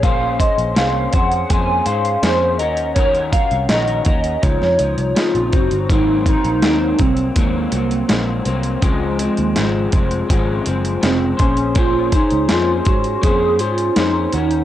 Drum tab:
HH |x-xxx-xxx-xxx-xx|xxxxxxxxx-xxxxxx|x-xxx-xxx-xxx-xx|x-xxx-xxx-xxx-xx|
SD |----o-------o---|----o----o--o---|----o-------o---|----o-------o---|
BD |o-o---o-o-------|o-o---o-o-----o-|o-o---o-o-------|o-----o-o-----o-|

HH |x-xxx-xxx-xxx-xx|
SD |----o-------o---|
BD |o-o---o-o-------|